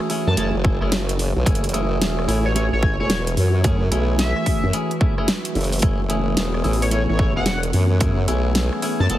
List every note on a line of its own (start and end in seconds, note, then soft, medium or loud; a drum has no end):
0.00 9.18 E3 medium
0.00 9.18 A3 medium
0.00 5.82 F#4 medium
0.00 cross-stick medium
0.09 0.27 A3 medium
0.09 0.27 C#4 medium
0.09 0.27 E4 medium
0.09 0.28 G#4 medium
0.09 open hi-hat medium
0.27 0.36 F#2 medium
0.27 0.34 A5 medium
0.37 0.52 F#1 loud
0.37 0.55 A3 medium
0.37 0.55 C#4 medium
0.37 0.55 E4 medium
0.37 0.55 G#4 medium
0.37 0.48 A5 medium
0.37 closed hi-hat medium
0.54 0.79 F#1 loud
0.64 0.78 A3 medium
0.64 0.78 C#4 medium
0.64 0.78 E4 medium
0.64 0.78 G#4 medium
0.64 kick loud
0.81 1.33 F#1 loud
0.81 0.92 A3 medium
0.81 0.92 C#4 medium
0.81 0.92 E4 medium
0.81 0.92 G#4 loud
0.81 cross-stick medium
0.92 snare loud
0.92 closed hi-hat medium
1.09 closed hi-hat medium
1.19 open hi-hat medium
1.36 1.44 B1 loud
1.46 1.99 F#1 loud
1.46 1.64 A3 loud
1.46 1.64 C#4 medium
1.46 1.64 E4 medium
1.46 1.64 G#4 loud
1.46 kick loud
1.46 closed hi-hat medium
1.55 closed hi-hat medium
1.64 closed hi-hat medium
1.69 closed hi-hat soft
1.73 2.26 A3 medium
1.73 2.26 C#4 medium
1.73 2.26 E4 medium
1.73 2.26 G#4 medium
1.73 closed hi-hat medium
2.00 2.26 E1 loud
2.00 snare loud
2.00 closed hi-hat medium
2.19 cross-stick medium
2.28 2.70 A1 medium
2.28 2.46 A3 medium
2.28 2.46 C#4 medium
2.28 2.46 E4 medium
2.28 2.46 G#4 medium
2.28 open hi-hat medium
2.45 2.52 C#5 medium
2.55 2.73 A3 medium
2.55 2.73 C#4 medium
2.55 2.73 E4 medium
2.55 2.73 G#4 medium
2.55 2.67 C#5 medium
2.55 closed hi-hat medium
2.72 2.97 A1 loud
2.72 2.95 C#5 loud
2.82 2.96 A3 medium
2.82 2.96 C#4 medium
2.82 2.96 E4 medium
2.82 2.96 G#4 loud
2.82 kick loud
3.00 3.35 E1 medium
3.00 3.10 A3 medium
3.00 3.10 C#4 medium
3.00 3.10 E4 medium
3.00 3.10 G#4 loud
3.00 3.23 C#5 medium
3.10 snare loud
3.10 closed hi-hat medium
3.27 closed hi-hat medium
3.37 3.90 F#2 loud
3.37 open hi-hat medium
3.64 3.82 A3 loud
3.64 3.82 C#4 medium
3.64 3.82 E4 medium
3.64 3.82 G#4 loud
3.64 kick loud
3.64 closed hi-hat medium
3.91 4.33 B1 loud
3.91 4.44 A3 medium
3.91 4.44 C#4 medium
3.91 4.44 E4 medium
3.91 4.44 G#4 medium
3.91 closed hi-hat medium
4.19 4.74 E5 loud
4.19 snare loud
4.19 closed hi-hat medium
4.36 cross-stick medium
4.46 4.64 A3 medium
4.46 4.64 C#4 medium
4.46 4.64 E4 medium
4.46 4.64 G#4 medium
4.46 kick medium
4.46 open hi-hat medium
4.63 4.72 F#2 loud
4.73 4.91 A3 medium
4.73 4.91 C#4 medium
4.73 4.91 E4 medium
4.73 4.91 G#4 medium
4.73 closed hi-hat medium
4.91 closed hi-hat soft
5.01 5.14 A3 medium
5.01 5.14 C#4 medium
5.01 5.14 E4 medium
5.01 5.14 G#4 medium
5.01 kick loud
5.18 5.28 A3 medium
5.18 5.28 C#4 medium
5.18 5.28 E4 medium
5.18 5.28 G#4 loud
5.18 cross-stick medium
5.28 snare loud
5.28 closed hi-hat medium
5.45 closed hi-hat medium
5.55 5.81 F#1 loud
5.55 open hi-hat soft
5.61 open hi-hat soft
5.64 open hi-hat soft
5.72 open hi-hat soft
5.72 open hi-hat medium
5.79 6.36 F#1 loud
5.79 6.00 A3 loud
5.79 9.18 B3 loud
5.79 6.00 C#4 medium
5.79 6.00 G#4 loud
5.79 kick loud
5.79 closed hi-hat medium
5.79 open hi-hat medium
5.83 6.00 E4 medium
6.09 6.62 A3 medium
6.09 6.62 C#4 medium
6.09 6.62 E4 medium
6.09 6.62 G#4 medium
6.09 closed hi-hat medium
6.37 6.63 E1 loud
6.37 snare loud
6.37 closed hi-hat medium
6.54 cross-stick medium
6.64 7.06 A1 medium
6.64 6.82 A3 medium
6.64 6.82 C#4 medium
6.64 6.82 E4 medium
6.64 6.82 G#4 medium
6.64 open hi-hat soft
6.73 open hi-hat soft
6.82 6.88 C#5 medium
6.82 open hi-hat medium
6.91 7.09 A3 medium
6.91 7.09 C#4 medium
6.91 7.09 E4 medium
6.91 7.09 G#4 loud
6.91 7.03 C#5 medium
6.91 closed hi-hat medium
7.09 7.34 A1 loud
7.09 7.32 C#5 loud
7.19 7.32 A3 medium
7.19 7.32 C#4 medium
7.19 7.32 E4 medium
7.19 7.32 G#4 loud
7.19 kick loud
7.36 7.72 E1 loud
7.36 7.46 A3 medium
7.36 7.46 C#4 medium
7.36 7.47 E4 medium
7.36 7.46 G#4 loud
7.36 7.59 F#5 medium
7.46 snare loud
7.46 closed hi-hat medium
7.63 closed hi-hat medium
7.73 8.27 F#2 loud
7.73 open hi-hat medium
8.00 8.18 A3 medium
8.00 8.18 C#4 medium
8.00 8.18 E4 medium
8.00 8.18 G#4 loud
8.00 kick loud
8.00 closed hi-hat medium
8.28 8.70 B1 loud
8.28 8.80 A3 medium
8.28 8.80 C#4 medium
8.28 8.80 E4 medium
8.28 8.80 G#4 medium
8.28 closed hi-hat medium
8.55 snare loud
8.55 closed hi-hat medium
8.73 cross-stick medium
8.82 9.00 A3 medium
8.82 9.00 C#4 medium
8.82 9.00 E4 medium
8.82 9.00 G#4 medium
8.82 open hi-hat medium
9.00 9.08 F#2 medium
9.00 9.06 A5 medium
9.10 9.18 F#1 loud
9.10 9.18 A3 loud
9.10 9.18 C#4 medium
9.10 9.18 E4 medium
9.10 9.18 G#4 medium
9.10 9.18 A5 medium
9.10 closed hi-hat medium